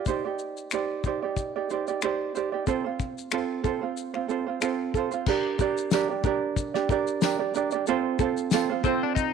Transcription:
0.06 D#4 G4 C5, kick, shaker
0.10 D5
0.25 D#4 G4 D5
0.39 shaker
0.57 shaker
0.71 D#4 G4 C5 D5, finger snap, shaker
1.04 D#4 G4 C5 D5, kick, shaker
1.22 D#4 G4 D5
1.37 kick, shaker
1.56 D#4 G4 D5
1.70 D#4 G4 C5 D5, shaker
1.87 D#4 G4 D5, shaker
2.02 D#4 G4 C5 D5, finger snap, shaker
2.35 D#4 G4 C5 D5, shaker
2.52 D#4 G4 D5
2.67 C4 F4 A4 C5, kick, shaker
2.84 C4 F4 C5
3.00 kick, shaker
3.18 shaker
3.31 C4 F4 A4 C5, finger snap, shaker
3.64 C4 F4 A4 C5, kick, shaker
3.81 C4 F4 C5
3.97 shaker
4.14 C4 F4 C5, finger snap
4.28 C4 F4 A4 C5, shaker
4.47 C4 F4 C5
4.61 C4 F4 A4 C5, finger snap, shaker
4.94 C4 F4 A4 C5, kick, shaker
5.11 C4 F4 C5, shaker
5.26 D4 G4 A#4 D5, kick, crash
5.59 D4 G4 A#4 D5, kick, shaker
5.77 shaker
5.91 D4 G4 A#4 D5, snare, tambourine, shaker
6.10 D4 G4 D5
6.24 D4 G4 A#4 D5, kick, shaker
6.56 kick, shaker
6.74 D4 G4 D5, snare
6.89 D4 G4 A#4 D5, kick, shaker
7.07 shaker
7.21 D4 G4 A#4 D5, snare, tambourine, shaker
7.39 D4 G4 D5
7.54 D4 G4 A#4 D5, shaker
7.71 G4 D5, shaker
7.75 D4
7.87 C4 F4 A4 C5, shaker
8.19 C4 F4 A4 C5, kick, shaker
8.37 shaker
8.51 C4 F4 A4 C5, snare, tambourine, shaker
8.70 C4 F4 C5
8.83 C4 F4 A4 C5, kick, shaker
9.03 D4
9.15 D#4, kick, shaker

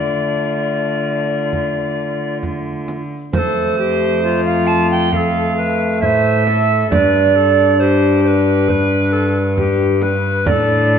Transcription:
Already playing: D3 A3 F4 D5
1.53 frame drum
2.43 frame drum
2.88 frame drum
3.33 F2 A3 A#4 C5, frame drum
3.38 A4
3.78 G4
4.24 F4
4.46 F5
4.67 A5
4.91 G5
5.12 A3 A#4 F5, frame drum
5.16 A4
5.57 B4
6.01 A2 C5 C#5 E5, frame drum
6.47 A4, frame drum
6.90 G2 D4 C5 D5, frame drum
6.95 B4
7.36 A4
7.80 G4 C5
8.24 B4 C5
8.69 B4 C5, frame drum
9.12 A4
9.57 G4, frame drum
10.01 B4, frame drum
10.46 A2 D4 A#4 D5, frame drum
10.51 A4

